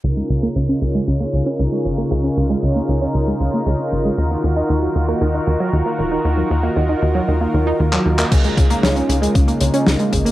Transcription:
<<
  \new Staff \with { instrumentName = "Analog synth pad" } { \time 4/4 \key des \mixolydian \tempo 4 = 116 << { <ees' bes'>1~ | <ees' bes'>1~ | <ees' bes'>1~ | <ees' bes'>1 |
<bes f'>1 | } \\ { <des des' f'>1~ | <des des' f'>1 | <ees ges'>1~ | <ees ges'>1 |
<des aes ees'>1 | } >> }
  \new Staff \with { instrumentName = "Synth arpeggio sound" } { \clef bass \time 4/4 \key des \mixolydian des16 aes16 des16 bes16 des16 des'16 des16 aes16 des16 bes16 des16 des'16 des16 aes16 des16 bes16 | des16 des'16 des16 aes16 des16 bes16 des16 des'16 des16 aes16 des16 bes16 des16 des'16 des16 aes16 | ees16 bes16 ees16 ees'16 ees16 ges16 ees16 bes16 ees16 ees'16 ees16 ges16 ees16 bes16 ees16 ees'16 | ees16 ges16 ees16 bes16 ees16 ees'16 ees16 ges16 ees16 bes16 ees16 ees'16 ees16 ges16 ees16 bes16 |
des16 aes16 des16 bes16 des16 des'16 des16 aes16 des16 bes16 des16 des'16 des16 aes16 des16 bes16 | }
  \new Staff \with { instrumentName = "Analog synth bass" } { \clef bass \time 4/4 \key des \mixolydian des,8 des,8 des,8 des,8 des,8 des,8 des,8 aes,,8 | des,8 des,8 des,8 des,8 des,8 des,8 des,8 aes,,8 | ees,8 ees,8 ees,8 ees,8 ees,8 ees,8 ees,8 ees,,8 | ees,8 ees,8 ees,8 ees,8 ees,8 ees,8 ees,8 ees,8 |
des,8 des,8 des,8 des,8 des,8 des,8 des,8 aes,,8 | }
  \new DrumStaff \with { instrumentName = "Drums" } \drummode { \time 4/4 r4 r4 r4 r4 | r4 r4 r4 r4 | r4 r4 r4 r4 | r4 r4 r4 r16 hc8 hc16 |
<cymc hh bd>16 hh16 <hh bd>16 hh16 <hh sn>16 hh16 hh16 hh16 <hh bd>16 hh16 hh16 hh16 <hh sn>16 hh16 <hh bd>16 hh16 | }
>>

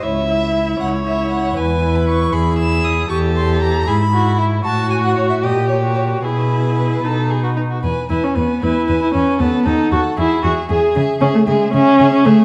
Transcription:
<<
  \new Staff \with { instrumentName = "Violin" } { \time 6/8 \key cis \minor \tempo 4. = 77 cis''8 e''4 fis''8 e''8 fis''8 | \key e \major gis''8. b''16 cis'''8 b''8 e'''8 dis'''8 | des'''8 c'''8 bes''8 b''4 r8 | a''8 gis''16 fis''16 cis''16 e''16 dis''8 cis''8 cis''8 |
b'2~ b'8 r8 | gis''8 gis''8 gis''8 gis''8 gis''8 gis''8 | fis''8 fis''8 fis''8 e''8 e''8 e''8 | e''8 e''8 e''8 e''8 e''8 e''8 | }
  \new Staff \with { instrumentName = "Violin" } { \time 6/8 \key cis \minor e''4. cis''4. | \key e \major b'4. gis'4. | a'4. gis'8 fis'8 e'8 | fis'4. g'4. |
gis'4. a'8 gis'16 fis'16 dis'16 fis'16 | b'8 b'8 b'8 b'8 b'8 b'8 | a'8 a'8 a'8 gis'8 gis'8 gis'8 | gis'8 gis'8 gis'8 gis'8 gis'8 gis'8 | }
  \new Staff \with { instrumentName = "Viola" } { \time 6/8 \key cis \minor e'8 e'4. e'4 | \key e \major r8 e'4. e'4 | g'8 g'4 e'8 e'4 | fis'4. g'8. fis'8. |
e'4. dis'4 r8 | r8 e'16 cis'16 b8 e'8. e'16 cis'8 | b8 dis'8 fis'8 e'8 fis'8 gis'8 | r8 cis'16 a16 gis8 cis'8. cis'16 a8 | }
  \new Staff \with { instrumentName = "Cello" } { \clef bass \time 6/8 \key cis \minor cis,4. cis,4. | \key e \major e,4. e,4. | e,4. gis,4. | a,4. ais,4. |
b,4. b,4 r8 | e,8 e,8 e,8 e,8 e,8 e,8 | dis,8 dis,8 dis,8 e,8 e,8 e,8 | cis8 cis8 cis8 cis8 cis8 cis8 | }
>>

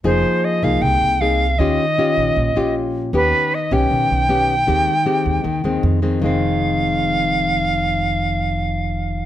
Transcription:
<<
  \new Staff \with { instrumentName = "Flute" } { \time 4/4 \key f \minor \tempo 4 = 156 c''4 ees''8 f''8 g''4 f''4 | ees''2. r4 | b'4 ees''8 g''2~ g''8~ | g''2. r4 |
f''1~ | f''1 | }
  \new Staff \with { instrumentName = "Nylon-string guitar" } { \time 4/4 \key f \minor << { <bes ees' aes'>4. <bes ees' aes'>4. <bes ees' aes'>8 r8 | <des' f' g'>8 r8 <des' f' g'>4. <des' f' g'>4. | <b des' g'>4 r8 <b des' g'>4. <b des' g'>8 r8 | <aes c' g'>8 r8 <aes c' g'>4 r8 <ees aes c'>4 <ees aes c'>8~ |
<ees aes c'>4 r2. | r1 | } \\ { f2 c2 | ees2 bes,2 | ees2 ees2 | ees2 ees4 r4 |
<f, ees aes c'>1~ | <f, ees aes c'>1 | } >> }
  \new Staff \with { instrumentName = "Upright bass" } { \clef bass \time 4/4 \key f \minor f,,8 r4 c,8 c,8 c,4. | ees,8 r4 bes,,8 bes,,8 bes,,4. | ees,8 r4 b,,8 b,,8 b,,4. | ees,8 r4 ees,8 ees,8 ees,8 f,4 |
f,,1~ | f,,1 | }
>>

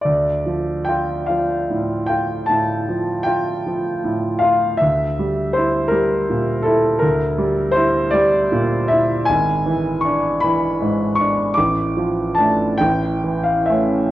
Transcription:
<<
  \new Staff \with { instrumentName = "Grand piano" } { \time 12/8 \key d \minor \tempo 4. = 52 d''4 g''8 f''4 g''8 a''4 g''4. f''8 | e''4 c''8 bes'4 a'8 bes'4 c''8 d''4 e''8 | gis''4 cis'''8 b''4 cis'''8 d'''4 a''8 g''8. f''16 e''8 | }
  \new Staff \with { instrumentName = "Grand piano" } { \clef bass \time 12/8 \key d \minor d,8 f8 f'8 f8 a,8 f'8 a,8 f8 f'8 f8 a,8 f'8 | d,8 g8 e'8 g8 bes,8 e'8 d,8 g8 e'8 g8 bes,8 e'8 | gis,,8 e8 d'8 e8 gis,8 d'8 a,,8 f8 <a d'>8 a,,8 e8 <a cis'>8 | }
>>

